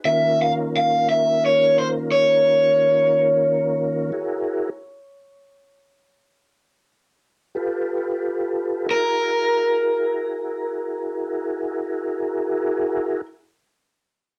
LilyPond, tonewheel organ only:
\new Staff \with { instrumentName = "Tonewheel organ" } { \time 12/8 \key cis \dorian \tempo 4. = 52 <dis ais cis' eis' ais'>1. | <e' fis' gis' ais'>4 r2. r8 <f' g' a' b'>4. | <e' fis' gis' ais'>1. | }